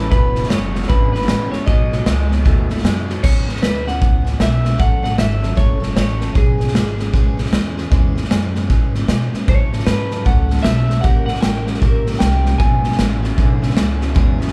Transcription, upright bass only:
0.00 0.10 A1 medium
0.12 0.50 E1 medium
0.51 0.89 F#1 medium
0.90 1.28 G#1 medium
1.29 1.52 A1 loud
1.53 muted upright bass stroke soft
1.67 2.05 B1 medium
2.06 2.44 C#2 loud
2.46 2.83 D#2 medium
2.84 3.22 F#2 medium
3.24 3.62 E2 medium
3.62 4.01 D2 loud
4.02 4.40 C#2 medium
4.40 4.79 B1 medium
4.80 5.18 A1 medium
5.19 5.57 G#1 loud
5.58 5.96 F#1 medium
5.97 6.35 A1 medium
6.35 6.74 B1 medium
6.75 7.13 G#1 loud
7.14 7.52 B1 medium
7.53 7.91 E2 loud
7.92 8.30 E2 medium
8.31 8.69 F#2 loud
8.70 9.08 G#2 medium
9.08 9.31 B2 medium
9.34 muted upright bass stroke soft
9.48 9.86 A2 medium
9.87 10.25 G#2 medium
10.26 10.64 C#2 medium
10.65 11.03 B1 loud
11.04 11.42 A#1 medium
11.43 11.81 A1 medium
11.82 12.20 A#1 medium
12.21 12.59 C2 loud
12.60 12.98 B1 medium
12.99 13.37 A1 loud
13.38 13.76 B1 medium
13.77 14.15 C#2 medium
14.16 14.52 E2 medium

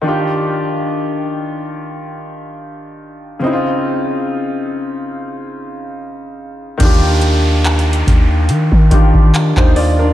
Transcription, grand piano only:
0.02 3.37 D#3 medium
0.02 3.38 D4 medium
0.06 3.39 F4 medium
0.06 3.40 G4 medium
3.39 6.75 C#3 medium
3.39 6.76 C4 medium
3.44 6.77 D#4 medium
3.44 3.51 E4 medium
3.53 6.81 F4 medium
6.78 8.86 D#3 medium
6.78 8.87 D4 medium
6.82 8.88 F4 medium
6.82 8.89 G4 medium
8.90 10.13 D#3 medium
8.90 9.34 D4 medium
8.90 9.34 F4 medium
8.90 9.35 G4 medium
9.57 9.75 D#4 medium
9.57 9.75 C5 medium
9.76 9.98 F4 medium
9.76 9.98 D5 medium
9.99 10.13 D4 medium
9.99 10.13 A#4 medium

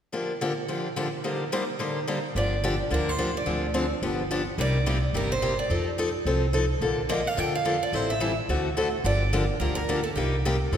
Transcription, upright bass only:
2.35 2.80 G1 medium
2.91 3.36 D2 medium
3.46 3.91 D2 medium
4.02 4.47 G1 medium
4.58 5.03 C2 medium
5.13 5.58 G1 medium
5.70 6.15 F2 medium
6.25 6.70 C2 medium
6.81 7.26 A#1 medium
7.37 7.82 F2 medium
7.93 8.38 A1 medium
8.48 8.93 D2 medium
9.04 9.49 G1 medium
9.60 10.05 D2 medium
10.16 10.61 C2 medium
10.72 10.77 F2 medium

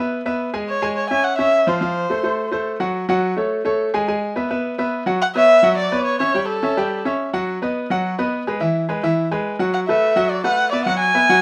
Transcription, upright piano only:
0.00 0.20 B3 medium
0.00 0.20 B4 medium
0.00 0.20 E5 medium
0.26 0.49 B3 medium
0.26 0.49 B4 medium
0.26 0.49 E5 medium
0.54 0.77 G#3 medium
0.54 0.77 G#4 medium
0.54 0.77 G#5 medium
0.82 1.05 G#3 medium
0.82 1.05 G#4 medium
0.82 1.06 G#5 medium
1.11 1.34 C#4 medium
1.11 1.34 C#5 medium
1.11 1.34 E5 medium
1.39 1.62 C#4 medium
1.39 1.62 C#5 medium
1.39 1.62 E5 medium
1.67 1.79 F3 medium
1.67 1.79 F4 medium
1.67 1.79 F5 medium
1.81 2.04 F3 medium
1.81 2.05 F4 medium
1.81 2.05 F5 medium
2.10 2.21 A3 medium
2.10 2.22 A4 medium
2.10 2.22 C5 medium
2.24 2.47 A3 medium
2.24 2.47 A4 medium
2.24 2.47 C5 medium
2.52 2.75 A3 medium
2.52 2.76 A4 medium
2.52 2.76 C5 medium
2.80 3.03 F#3 medium
2.80 3.04 F#4 medium
2.80 3.04 F#5 medium
3.09 3.32 F#3 medium
3.09 3.32 F#4 medium
3.09 3.33 F#5 medium
3.37 3.60 A3 medium
3.37 3.61 A4 medium
3.37 3.61 C#5 medium
3.65 3.88 A3 medium
3.65 3.89 A4 medium
3.65 3.89 C#5 medium
3.94 4.06 G#3 medium
3.94 4.06 G#4 medium
3.94 4.06 G#5 medium
4.08 4.31 G#3 medium
4.08 4.32 G#4 medium
4.08 4.32 G#5 medium
4.36 4.48 B3 medium
4.36 4.48 B4 medium
4.36 4.48 E5 medium
4.50 4.74 B3 medium
4.50 4.74 B4 medium
4.50 4.74 E5 medium
4.78 5.02 B3 medium
4.78 5.02 B4 medium
4.78 5.02 E5 medium
5.06 5.18 F#3 medium
5.06 5.19 F#4 medium
5.06 5.19 F#5 medium
5.35 5.59 B3 medium
5.35 5.59 B4 medium
5.35 5.59 C#5 medium
5.63 5.86 F#3 medium
5.63 5.87 F#4 medium
5.63 5.87 F#5 medium
5.92 6.15 B3 medium
5.92 6.15 B4 medium
5.92 6.15 C#5 medium
6.20 6.32 C#4 medium
6.20 6.32 C#5 medium
6.20 6.32 E5 medium
6.34 6.58 G3 medium
6.34 6.58 G4 medium
6.34 6.58 G5 medium
6.63 6.75 C#4 medium
6.63 6.75 C#5 medium
6.63 6.75 E5 medium
6.77 7.00 G3 medium
6.77 7.01 G4 medium
6.77 7.01 G5 medium
7.05 7.29 C#4 medium
7.05 7.29 C#5 medium
7.05 7.29 E5 medium
7.33 7.57 F#3 medium
7.33 7.57 F#4 medium
7.33 7.57 F#5 medium
7.62 7.85 B3 medium
7.62 7.85 B4 medium
7.62 7.86 D#5 medium
7.90 8.13 F#3 medium
7.90 8.14 F#4 medium
7.90 8.14 F#5 medium
8.19 8.42 B3 medium
8.19 8.42 B4 medium
8.19 8.42 D#5 medium
8.47 8.59 G#3 medium
8.47 8.59 G#4 medium
8.47 8.59 B4 medium
8.60 8.84 E3 medium
8.60 8.84 E4 medium
8.60 8.84 E5 medium
8.89 9.01 G#3 medium
8.89 9.01 G#4 medium
8.89 9.01 B4 medium
9.03 9.26 E3 medium
9.03 9.27 E4 medium
9.03 9.27 E5 medium
9.31 9.55 G#3 medium
9.31 9.55 G#4 medium
9.31 9.55 B4 medium
9.59 9.83 F#3 medium
9.59 9.83 F#4 medium
9.59 9.83 F#5 medium
9.89 10.12 A3 medium
9.89 10.12 A4 medium
9.89 10.12 B4 medium
10.16 10.39 F#3 medium
10.16 10.40 F#4 medium
10.16 10.40 F#5 medium
10.44 10.67 A3 medium
10.44 10.68 A4 medium
10.44 10.68 B4 medium
10.72 10.84 B3 medium
10.72 10.84 B4 medium
10.72 10.85 E5 medium
10.86 11.10 F#3 medium
10.86 11.10 F#4 medium
10.86 11.10 F#5 medium
11.14 11.26 B3 medium
11.14 11.27 B4 medium
11.14 11.27 E5 medium
11.29 11.42 F#3 medium
11.29 11.42 F#4 medium
11.29 11.42 F#5 medium

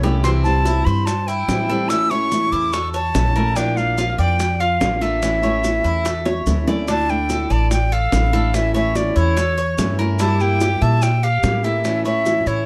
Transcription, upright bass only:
0.00 0.81 C2 medium
0.86 1.45 G2 medium
1.48 2.46 A2 medium
2.52 3.11 E2 medium
3.14 4.13 A#1 medium
4.19 4.77 F2 medium
4.81 5.79 A1 medium
5.84 6.43 E2 medium
6.47 7.44 D2 medium
7.50 8.08 A1 medium
8.12 9.10 A1 medium
9.16 9.74 E2 medium
9.78 10.75 G2 medium
10.82 11.40 A#2 medium
11.43 12.41 A2 medium
12.46 12.66 A2 medium

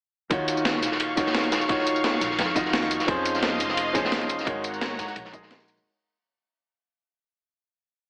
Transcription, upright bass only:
0.31 0.82 D#2 loud
0.82 2.02 A#1 medium
2.21 2.37 A#1 medium
2.38 2.98 F2 loud
3.08 3.61 F2 loud
3.60 4.45 F1 medium
4.47 5.00 G#1 medium
4.99 5.14 G#2 medium
5.16 5.76 A#1 medium
5.77 5.85 F#1 medium

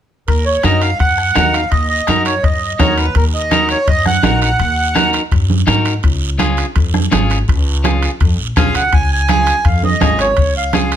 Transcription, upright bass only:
0.28 0.57 D#2 medium
0.64 0.93 F#2 medium
1.00 1.29 F#2 medium
1.36 1.65 D#2 medium
1.72 2.01 D#2 medium
2.08 2.37 F#2 medium
2.44 2.73 F#2 medium
2.80 3.09 D#2 medium
3.16 3.73 D#2 medium
3.88 4.17 F#2 medium
4.23 4.52 A#1 medium
4.60 5.18 D#2 medium
5.32 5.61 F#2 loud
5.68 5.97 G#2 medium
6.04 6.62 C#2 medium
6.76 7.05 F2 medium
7.13 7.42 G#1 medium
7.48 8.06 C#2 medium
8.21 8.35 F2 loud
8.39 8.55 A#1 medium
8.57 8.73 B1 medium
8.75 8.91 C#2 medium
8.93 9.51 C#2 medium
9.65 9.94 F2 medium
10.02 10.30 G#1 medium
10.38 10.95 C#2 medium

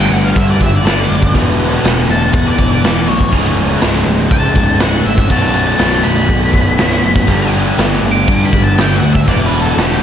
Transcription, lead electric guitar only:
0.00 0.12 G5 medium
0.12 0.23 F#5 medium
0.24 0.36 F5 medium
0.38 0.48 E5 medium
0.51 0.61 D5 medium
0.62 0.76 E5 medium
0.76 0.85 D5 medium
0.86 1.33 D5 loud
2.11 2.33 A5 loud
2.33 2.45 F#5 medium
2.48 2.69 D5 loud
2.70 3.06 D5 loud
3.08 3.32 C#5 loud
4.32 4.80 A5 loud
4.81 5.05 F#5 medium
5.05 5.29 E5 loud
5.31 5.41 A5 loud
5.42 6.03 A5 loud
6.04 7.49 B5 loud
8.11 8.44 D6 loud
8.45 8.61 B5 loud
8.63 8.78 A5 medium
8.80 8.95 G5 medium
8.96 9.12 F#5 loud
9.12 9.27 E5 loud
9.28 9.44 D5 medium
9.46 9.61 B4 loud
9.61 9.79 A4 medium
9.79 10.03 G4 medium

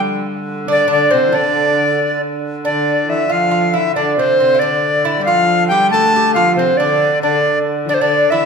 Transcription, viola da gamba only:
0.66 0.87 D3 medium
0.89 1.09 D3 medium
1.13 1.19 C3 medium
1.27 1.34 E3 medium
1.33 2.20 D3 medium
2.65 3.05 D3 medium
3.08 3.28 E3 medium
3.29 3.76 F3 medium
3.74 3.95 E3 medium
3.96 4.19 D3 medium
4.17 4.38 C3 medium
4.39 4.64 C3 medium
4.62 5.18 D3 medium
5.19 5.28 G3 medium
5.27 5.72 F3 medium
5.70 5.92 G3 medium
5.90 6.37 A3 medium
6.36 6.58 F3 medium
6.56 6.77 C3 medium
6.78 7.19 D3 medium
7.22 7.59 D3 medium
7.85 8.00 D3 medium
7.85 7.90 E3 medium
8.01 8.29 D3 medium
8.32 8.41 E3 medium

